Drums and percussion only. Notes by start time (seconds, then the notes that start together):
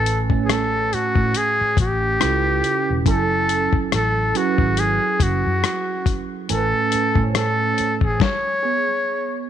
0.06 closed hi-hat
0.30 kick
0.49 cross-stick, closed hi-hat
0.93 closed hi-hat
1.16 kick
1.34 closed hi-hat
1.77 kick, closed hi-hat
2.21 cross-stick, closed hi-hat
2.64 closed hi-hat
3.06 kick, closed hi-hat
3.49 closed hi-hat
3.73 kick
3.92 cross-stick, closed hi-hat
4.35 closed hi-hat
4.58 kick
4.77 closed hi-hat
5.20 kick, closed hi-hat
5.64 cross-stick, closed hi-hat
6.06 kick, closed hi-hat
6.49 closed hi-hat
6.92 closed hi-hat
7.15 kick
7.35 cross-stick, closed hi-hat
7.78 closed hi-hat
8.01 kick
8.20 kick, snare